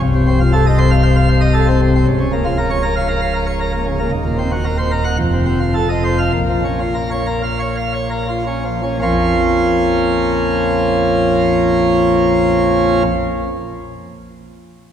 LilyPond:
<<
  \new Staff \with { instrumentName = "Pipe organ" } { \time 4/4 \key bes \minor \tempo 4 = 100 c,16 c16 c'16 f'16 a'16 ees''16 c''16 f''16 c''16 f''16 c''16 ees''16 a'16 c'16 c16 c'16 | des,16 des16 bes16 f'16 bes'16 des''16 bes'16 f''16 bes'16 f''16 bes'16 des''16 bes'16 bes16 des16 bes16 | ees,16 bes,16 c'16 ges'16 bes'16 c''16 bes'16 ges''16 f,16 c16 c'16 f'16 a'16 ees''16 c''16 f''16 | bes,16 f16 des'16 f'16 bes'16 des''16 bes'16 f''16 des''16 f''16 des''16 bes'16 f'16 des'16 f16 des'16 |
<bes,, f, f bes des' f'>1~ | <bes,, f, f bes des' f'>1 | }
  \new Staff \with { instrumentName = "Pipe organ" } { \clef bass \time 4/4 \key bes \minor c,,1 | des,,1 | ees,,2 f,,2 | bes,,1 |
r1 | r1 | }
>>